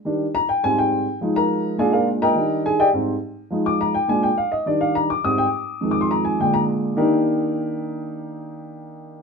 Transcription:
<<
  \new Staff \with { instrumentName = "Upright piano" } { \time 4/4 \key ees \major \tempo 4 = 208 r4 bes''8 g''8 aes''8 g''4. | r8 <bes' bes''>4. <aes' d'' f'' aes''>8 <f' bes' d'' f''>8 r8 <bes' ees'' g'' bes''>8~ | <bes' ees'' g'' bes''>4 <aes' aes''>8 <g' d'' ees'' g''>8 r2 | r8 d'''8 bes''8 g''8 aes''8 g''8 f''8 ees''8 |
d''8 f''8 bes''8 d'''8 ees'''8 g''8 r4 | \tuplet 3/2 { r8 d'''8 c'''8 } bes''8 aes''8 g''8 bes''8 r4 | <ees bes d' ees' g' bes'>1~ | <ees bes d' ees' g' bes'>1 | }
  \new Staff \with { instrumentName = "Upright piano" } { \clef bass \time 4/4 \key ees \major <ees g d'>8 r4. <aes, g c'>4. r8 | <f aes ees'>2 <bes, aes d'>2 | <ees g d'>4. r8 <aes, g c'>8 r4. | <f aes ees'>4. r8 <bes, aes d'>8 r4. |
<ees g d'>4. r8 <aes, g c'>8 r4. | <f, ees aes>2 <bes, d aes>2 | r1 | r1 | }
>>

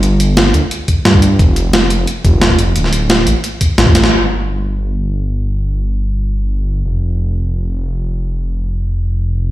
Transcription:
<<
  \new Staff \with { instrumentName = "Detuned saw bass" } { \clef bass \time 4/4 \key d \minor \tempo 4 = 176 g,,4. d,8 r4 g,4 | f,,2 r8 f,,4 f,,8 | d,,4. a,,8 r4 a,,8 a,,8 | g,,1~ |
g,,1 | f,,1~ | f,,1 | }
  \new DrumStaff \with { instrumentName = "Drums" } \drummode { \time 4/4 hh8 hh8 <hh sn>8 hh8 hh8 <hh bd>8 <hh sn>16 bd16 hh8 | <hh bd>8 hh8 <hh sn>8 hh8 hh8 <hh bd>8 <hh sn>16 bd16 hh8 | hh16 sn16 hh8 <hh sn>8 hh8 hh8 <hh bd>8 <hh sn>16 bd16 <hh sn>16 sn16 | r4 r4 r4 r4 |
r4 r4 r4 r4 | r4 r4 r4 r4 | r4 r4 r4 r4 | }
>>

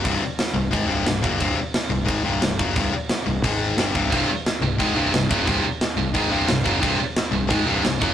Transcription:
<<
  \new Staff \with { instrumentName = "Distorted electric guitar" } { \clef bass \time 4/4 \key c \minor \tempo 4 = 177 <c, g, c>8 r4 <c, g,>8 <aes, ees aes>8 <c, g, c>8 <c, g,>8 <fis, des fis>8 | <c, g, c>8 r4 <c, g,>8 <aes, ees aes>8 <c, g, c>8 <c, g,>8 <fis, des fis>8 | <c, g, c>8 r4 <c, g,>8 <aes, ees aes>4 <g, d g>8 <c, g, c>8 | <c, g, c>8 r4 <c, g,>8 <aes, ees aes>8 <c, g, c>8 <c, g,>8 <fis, des fis>8 |
<c, g, c>8 r4 <c, g,>8 <aes, ees aes>8 <c, g, c>8 <c, g,>8 <fis, des fis>8 | <c, g, c>8 r4 <c, g,>8 <aes, ees aes>8 <c, g, c>8 <c, g,>8 <fis, des fis>8 | }
  \new Staff \with { instrumentName = "Distorted electric guitar" } { \clef bass \time 4/4 \key c \minor r1 | r1 | r1 | <c, g, c>8 r4 <c, g,>8 <aes, ees aes>8 <c, g, c>8 <c, g,>8 <fis, des fis>8 |
<c, g, c>8 r4 <c, g,>8 <aes, ees aes>8 <c, g, c>8 <c, g,>8 <fis, des fis>8 | <c, g, c>8 r4 <c, g,>8 <aes, ees aes>8 <c, g, c>8 <c, g,>8 <fis, des fis>8 | }
  \new Staff \with { instrumentName = "Picked electric bass" } { \clef bass \time 4/4 \key c \minor c,,8 r4 c,,8 aes,,8 c,,8 c,,8 fis,,8 | c,,8 r4 c,,8 aes,,8 c,,8 c,,8 fis,,8 | c,,8 r4 c,,8 aes,,4 g,,8 c,,8 | c,,8 r4 c,,8 aes,,8 c,,8 c,,8 fis,,8 |
c,,8 r4 c,,8 aes,,8 c,,8 c,,8 fis,,8 | c,,8 r4 c,,8 aes,,8 c,,8 c,,8 fis,,8 | }
  \new DrumStaff \with { instrumentName = "Drums" } \drummode { \time 4/4 <cymc bd>4 <cymc sn>16 sn8. <cymc bd>4 <cymc sn>8 bd8 | <cymc bd>4 <cymc sn>4 <cymc bd>4 <cymc sn>8 bd8 | <cymc bd>4 <cymc sn>4 <cymc bd>4 <cymc sn>8 bd8 | <cymc bd>4 <cymc sn>4 <cymc bd>4 <cymc sn>8 bd8 |
<cymc bd>4 <cymc sn>4 <cymc bd>4 <cymc sn>8 bd8 | <cymc bd>4 <cymc sn>4 <cymc bd>4 <cymc sn>8 bd8 | }
>>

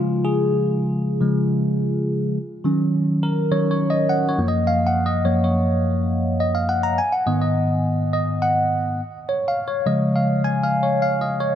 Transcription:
<<
  \new Staff \with { instrumentName = "Tine electric piano" } { \time 4/4 \key cis \mixolydian \tempo 4 = 104 \tuplet 3/2 { eis'8 gis'4~ } gis'8. r2 r16 | r4. ais'8 \tuplet 3/2 { cis''8 cis''8 dis''8 fis''8 cis''8 dis''8 } | \tuplet 3/2 { eis''8 fis''8 dis''8 cis''8 cis''8. r16 } r4 dis''16 eis''16 fis''16 ais''16 | gis''16 fis''16 dis''16 dis''8 r8. dis''8 fis''8 r4 |
\tuplet 3/2 { cis''8 eis''8 cis''8 } dis''8 eis''8 \tuplet 3/2 { gis''8 eis''8 cis''8 eis''8 dis''8 cis''8 } | }
  \new Staff \with { instrumentName = "Tine electric piano" } { \clef bass \time 4/4 \key cis \mixolydian <cis eis gis>8 r4. <cis eis gis>8 r4. | r8 <dis fis cis'>4. <dis fis cis'>8 r4 <fis, eis ais>8~ | <fis, eis ais>4 <fis, eis ais>8 r2 r8 | r8 <gis, dis b>8 r2. |
r4 <cis eis gis>4. r4. | }
>>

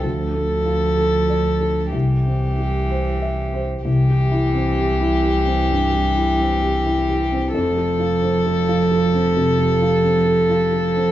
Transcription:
<<
  \new Staff \with { instrumentName = "Violin" } { \time 4/4 \key c \major \tempo 4 = 65 a'2 g'2 | g'1 | a'1 | }
  \new Staff \with { instrumentName = "Upright piano" } { \time 4/4 \key c \major \tuplet 3/2 { d,8 a8 f'8 a'8 d''8 a'8 c,8 c'8 g'8 c''8 e''8 c''8 } | c,16 g'16 e'16 c'16 g'16 e'16 g'16 c'16 g,16 g'16 e'16 c'16 g'16 e'16 g'16 c'16 | f,16 a'16 f'16 c'16 a'16 f'16 a'16 c'16 c16 a'16 f'16 c'16 a'16 f'16 a'16 c'16 | }
  \new Staff \with { instrumentName = "Cello" } { \clef bass \time 4/4 \key c \major f2 e2 | e1 | f1 | }
  \new Staff \with { instrumentName = "Double bass" } { \clef bass \time 4/4 \key c \major d,2 c,2 | c,1 | f,,1 | }
>>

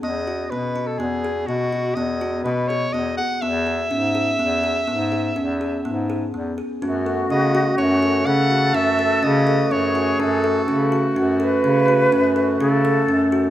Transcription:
<<
  \new Staff \with { instrumentName = "Soprano saxophone" } { \time 7/4 \key fis \dorian \tempo 4 = 124 dis''4 b'8. a'16 gis'4 fis'4 dis''4 b'8 cis''8 dis''8 fis''8 | e''1. r4 | r4 dis''4 cis''4 fis''4 e''4 dis''4 cis''4 | a'2 r1 r4 | }
  \new Staff \with { instrumentName = "Flute" } { \time 7/4 \key fis \dorian r1. r4 | r1. r4 | fis'2. a'2. gis'4~ | gis'4. r8 fis'8 b'2~ b'8 a'2 | }
  \new Staff \with { instrumentName = "Kalimba" } { \time 7/4 \key fis \dorian b8 fis'8 b8 fis'8 b8 gis'8 b8 fis'8 b8 fis'8 b8 gis'8 b8 gis'8 | b8 gis'8 cis'8 gis'8 b8 gis'8 b8 gis'8 cis'8 gis'8 b8 gis'8 b8 gis'8 | cis'8 a'8 cis'8 fis'8 cis'8 a'8 cis'8 fis'8 cis'8 a'8 cis'8 a'8 cis'8 fis'8 | cis'8 a'8 cis'8 fis'8 cis'8 a'8 cis'8 fis'8 cis'8 a'8 cis'8 a'8 cis'8 fis'8 | }
  \new Staff \with { instrumentName = "Woodwind section" } { \time 7/4 \key fis \dorian r1. r4 | r1. r4 | <e a fis'>1.~ <e a fis'>4~ | <e a fis'>1.~ <e a fis'>4 | }
  \new Staff \with { instrumentName = "Bass clarinet" } { \clef bass \time 7/4 \key fis \dorian e,4 b,4 e,4 b,4 e,4 b,4 e,8 r8 | e,4 gis,4 e,4 gis,4 e,4 gis,4 e,8 r8 | fis,4 cis4 fis,4 cis4 fis,4 cis4 fis,4 | fis,4 cis4 fis,4 cis4 fis,4 cis4 fis,4 | }
>>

